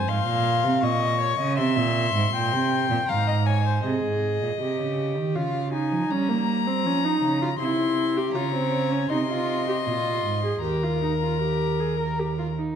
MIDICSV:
0, 0, Header, 1, 5, 480
1, 0, Start_track
1, 0, Tempo, 751880
1, 1012, Time_signature, 3, 2, 24, 8
1, 5812, Tempo, 770218
1, 8087, End_track
2, 0, Start_track
2, 0, Title_t, "Violin"
2, 0, Program_c, 0, 40
2, 50, Note_on_c, 0, 84, 88
2, 522, Note_off_c, 0, 84, 0
2, 526, Note_on_c, 0, 85, 88
2, 1000, Note_off_c, 0, 85, 0
2, 1006, Note_on_c, 0, 84, 100
2, 1954, Note_off_c, 0, 84, 0
2, 1969, Note_on_c, 0, 82, 84
2, 2209, Note_on_c, 0, 80, 72
2, 2219, Note_off_c, 0, 82, 0
2, 2454, Note_off_c, 0, 80, 0
2, 2458, Note_on_c, 0, 75, 60
2, 3417, Note_on_c, 0, 77, 69
2, 3426, Note_off_c, 0, 75, 0
2, 3650, Note_off_c, 0, 77, 0
2, 3654, Note_on_c, 0, 80, 65
2, 3896, Note_on_c, 0, 82, 85
2, 3906, Note_off_c, 0, 80, 0
2, 4839, Note_off_c, 0, 82, 0
2, 4843, Note_on_c, 0, 84, 86
2, 5316, Note_off_c, 0, 84, 0
2, 5324, Note_on_c, 0, 82, 76
2, 5800, Note_off_c, 0, 82, 0
2, 5808, Note_on_c, 0, 84, 85
2, 6748, Note_off_c, 0, 84, 0
2, 6763, Note_on_c, 0, 82, 68
2, 7945, Note_off_c, 0, 82, 0
2, 8087, End_track
3, 0, Start_track
3, 0, Title_t, "Violin"
3, 0, Program_c, 1, 40
3, 0, Note_on_c, 1, 72, 79
3, 55, Note_on_c, 1, 77, 80
3, 65, Note_off_c, 1, 72, 0
3, 532, Note_on_c, 1, 75, 92
3, 541, Note_off_c, 1, 77, 0
3, 764, Note_off_c, 1, 75, 0
3, 768, Note_on_c, 1, 73, 86
3, 884, Note_off_c, 1, 73, 0
3, 888, Note_on_c, 1, 75, 79
3, 1005, Note_off_c, 1, 75, 0
3, 1009, Note_on_c, 1, 76, 90
3, 1484, Note_off_c, 1, 76, 0
3, 1501, Note_on_c, 1, 79, 79
3, 1975, Note_on_c, 1, 77, 88
3, 1984, Note_off_c, 1, 79, 0
3, 2090, Note_off_c, 1, 77, 0
3, 2094, Note_on_c, 1, 75, 72
3, 2143, Note_off_c, 1, 75, 0
3, 2213, Note_on_c, 1, 73, 79
3, 2335, Note_off_c, 1, 73, 0
3, 2339, Note_on_c, 1, 72, 69
3, 2459, Note_off_c, 1, 72, 0
3, 5327, Note_on_c, 1, 73, 73
3, 5808, Note_on_c, 1, 75, 70
3, 5818, Note_off_c, 1, 73, 0
3, 6767, Note_off_c, 1, 75, 0
3, 6773, Note_on_c, 1, 70, 61
3, 7950, Note_off_c, 1, 70, 0
3, 8087, End_track
4, 0, Start_track
4, 0, Title_t, "Viola"
4, 0, Program_c, 2, 41
4, 2461, Note_on_c, 2, 68, 67
4, 2919, Note_off_c, 2, 68, 0
4, 2946, Note_on_c, 2, 67, 62
4, 3421, Note_on_c, 2, 65, 63
4, 3430, Note_off_c, 2, 67, 0
4, 3657, Note_off_c, 2, 65, 0
4, 3660, Note_on_c, 2, 63, 67
4, 3901, Note_on_c, 2, 61, 81
4, 3910, Note_off_c, 2, 63, 0
4, 4018, Note_on_c, 2, 58, 76
4, 4027, Note_off_c, 2, 61, 0
4, 4257, Note_on_c, 2, 60, 75
4, 4267, Note_off_c, 2, 58, 0
4, 4382, Note_on_c, 2, 61, 83
4, 4391, Note_off_c, 2, 60, 0
4, 4498, Note_on_c, 2, 63, 83
4, 4508, Note_off_c, 2, 61, 0
4, 4732, Note_off_c, 2, 63, 0
4, 4736, Note_on_c, 2, 65, 78
4, 4784, Note_off_c, 2, 65, 0
4, 4853, Note_on_c, 2, 64, 81
4, 5214, Note_on_c, 2, 67, 79
4, 5224, Note_off_c, 2, 64, 0
4, 5333, Note_on_c, 2, 65, 83
4, 5343, Note_off_c, 2, 67, 0
4, 5450, Note_off_c, 2, 65, 0
4, 5454, Note_on_c, 2, 60, 79
4, 5692, Note_on_c, 2, 61, 71
4, 5702, Note_off_c, 2, 60, 0
4, 5808, Note_off_c, 2, 61, 0
4, 5812, Note_on_c, 2, 63, 71
4, 5860, Note_off_c, 2, 63, 0
4, 5931, Note_on_c, 2, 65, 76
4, 6166, Note_off_c, 2, 65, 0
4, 6174, Note_on_c, 2, 67, 69
4, 6221, Note_off_c, 2, 67, 0
4, 6292, Note_on_c, 2, 65, 72
4, 6643, Note_off_c, 2, 65, 0
4, 6651, Note_on_c, 2, 68, 54
4, 6768, Note_off_c, 2, 68, 0
4, 6773, Note_on_c, 2, 67, 62
4, 6888, Note_on_c, 2, 65, 56
4, 6898, Note_off_c, 2, 67, 0
4, 7006, Note_off_c, 2, 65, 0
4, 7010, Note_on_c, 2, 63, 55
4, 7059, Note_off_c, 2, 63, 0
4, 7133, Note_on_c, 2, 65, 50
4, 7250, Note_off_c, 2, 65, 0
4, 7255, Note_on_c, 2, 67, 54
4, 7493, Note_on_c, 2, 68, 55
4, 7502, Note_off_c, 2, 67, 0
4, 7610, Note_off_c, 2, 68, 0
4, 7613, Note_on_c, 2, 70, 52
4, 7736, Note_on_c, 2, 67, 50
4, 7746, Note_off_c, 2, 70, 0
4, 7853, Note_off_c, 2, 67, 0
4, 7857, Note_on_c, 2, 65, 52
4, 7904, Note_off_c, 2, 65, 0
4, 7979, Note_on_c, 2, 63, 46
4, 8087, Note_off_c, 2, 63, 0
4, 8087, End_track
5, 0, Start_track
5, 0, Title_t, "Cello"
5, 0, Program_c, 3, 42
5, 46, Note_on_c, 3, 44, 85
5, 166, Note_off_c, 3, 44, 0
5, 170, Note_on_c, 3, 46, 98
5, 409, Note_on_c, 3, 48, 91
5, 418, Note_off_c, 3, 46, 0
5, 528, Note_on_c, 3, 46, 88
5, 538, Note_off_c, 3, 48, 0
5, 884, Note_off_c, 3, 46, 0
5, 887, Note_on_c, 3, 49, 93
5, 1009, Note_on_c, 3, 48, 94
5, 1018, Note_off_c, 3, 49, 0
5, 1129, Note_on_c, 3, 46, 97
5, 1138, Note_off_c, 3, 48, 0
5, 1365, Note_off_c, 3, 46, 0
5, 1369, Note_on_c, 3, 44, 87
5, 1484, Note_off_c, 3, 44, 0
5, 1488, Note_on_c, 3, 46, 91
5, 1613, Note_on_c, 3, 48, 100
5, 1623, Note_off_c, 3, 46, 0
5, 1848, Note_off_c, 3, 48, 0
5, 1852, Note_on_c, 3, 46, 83
5, 1901, Note_off_c, 3, 46, 0
5, 1974, Note_on_c, 3, 44, 90
5, 2450, Note_off_c, 3, 44, 0
5, 2455, Note_on_c, 3, 48, 65
5, 2571, Note_off_c, 3, 48, 0
5, 2577, Note_on_c, 3, 44, 59
5, 2815, Note_off_c, 3, 44, 0
5, 2819, Note_on_c, 3, 46, 55
5, 2868, Note_off_c, 3, 46, 0
5, 2938, Note_on_c, 3, 48, 63
5, 3057, Note_on_c, 3, 49, 68
5, 3067, Note_off_c, 3, 48, 0
5, 3299, Note_on_c, 3, 51, 65
5, 3309, Note_off_c, 3, 49, 0
5, 3416, Note_on_c, 3, 49, 67
5, 3426, Note_off_c, 3, 51, 0
5, 3775, Note_on_c, 3, 53, 74
5, 3785, Note_off_c, 3, 49, 0
5, 3892, Note_off_c, 3, 53, 0
5, 3895, Note_on_c, 3, 55, 69
5, 4370, Note_on_c, 3, 53, 69
5, 4380, Note_off_c, 3, 55, 0
5, 4603, Note_off_c, 3, 53, 0
5, 4607, Note_on_c, 3, 49, 76
5, 4846, Note_off_c, 3, 49, 0
5, 4848, Note_on_c, 3, 48, 69
5, 5319, Note_off_c, 3, 48, 0
5, 5324, Note_on_c, 3, 49, 73
5, 5800, Note_off_c, 3, 49, 0
5, 5810, Note_on_c, 3, 48, 69
5, 6284, Note_on_c, 3, 46, 61
5, 6294, Note_off_c, 3, 48, 0
5, 6521, Note_off_c, 3, 46, 0
5, 6525, Note_on_c, 3, 44, 62
5, 6758, Note_off_c, 3, 44, 0
5, 6762, Note_on_c, 3, 39, 54
5, 7945, Note_off_c, 3, 39, 0
5, 8087, End_track
0, 0, End_of_file